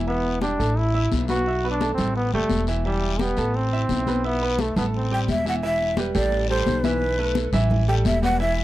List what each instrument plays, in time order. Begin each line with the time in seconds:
Already playing: upright bass E1
0.07 grand piano E3 E4 E5, trombone B3, high conga, long guiro
0.24 high conga
0.41 grand piano G3 G4 G5, trombone D4, high conga, short guiro
0.59 upright bass A1, grand piano A3 A4 A5, short guiro
0.77 trombone E4, high conga, long guiro
0.94 grand piano E4 E5 E6, high conga
1.12 upright bass B1, high conga, short guiro
1.28 grand piano B3 B4 B5, trombone F#4, high conga, short guiro
1.46 grand piano E4 E5 E6, high conga, long guiro
1.63 grand piano B3 B4 B5, high conga
1.71 trombone D4
1.81 grand piano A3 A4 A5, high conga, short guiro
1.94 trombone C4, high conga, low conga, short guiro
1.98 upright bass A1, grand piano A3 A4 A5
2.15 trombone B3, high conga, long guiro
2.32 upright bass F#1, grand piano G3 G4 G5, trombone A3, high conga
2.49 upright bass E1, high conga, short guiro
2.67 grand piano E3 E4 E5, short guiro
2.85 grand piano E3 E4 E5, trombone G3, high conga, long guiro
3.02 high conga
3.19 grand piano G3 G4 G5, trombone B3, high conga, short guiro
3.37 upright bass A1, grand piano A3 A4 A5, short guiro
3.54 trombone C4, high conga, long guiro
3.72 grand piano E4 E5 E6, high conga
3.89 upright bass B1, high conga, short guiro
4.07 grand piano B3 B4 B5, high conga, short guiro
4.24 trombone B3, grand piano E4 E5 E6, high conga, long guiro
4.41 grand piano B3 B4 B5, high conga
4.59 grand piano A3 A4 A5, trombone A3, high conga, short guiro
4.76 upright bass A1, grand piano A3 A4 A5, trombone B3, high conga, low conga, short guiro
4.93 trombone C4, high conga, long guiro
5.11 grand piano G3 G4 G5, shakuhachi G5, high conga
5.28 upright bass E1, shakuhachi E5, high conga, short guiro
5.46 grand piano E3 E4 E5, shakuhachi F#5, high conga, short guiro
5.63 grand piano E3 E4 E5, shakuhachi E5, high conga, long guiro
5.80 high conga
5.97 grand piano G3 G4 B4, high conga, short guiro
6.15 upright bass A1, grand piano G3 G4 A4, shakuhachi D5, short guiro
6.32 high conga, long guiro
6.49 grand piano G3 G4 A4, shakuhachi C5, high conga
6.66 upright bass B1, high conga, short guiro
6.84 grand piano E3 E4 E5, shakuhachi B4, high conga, short guiro
7.01 high conga, long guiro
7.18 grand piano A3 A4 B4, high conga
7.35 high conga, short guiro
7.53 upright bass A1, grand piano E3 E4 E5, high conga, low conga, short guiro
7.70 high conga, low conga, long guiro
7.88 grand piano G3 G4 A4, shakuhachi G5, high conga
8.05 upright bass E1, shakuhachi E5, high conga, short guiro
8.22 grand piano G3 G4 B4, shakuhachi F#5, high conga, short guiro
8.40 grand piano E3 E4 E5, shakuhachi E5, high conga, long guiro
8.57 high conga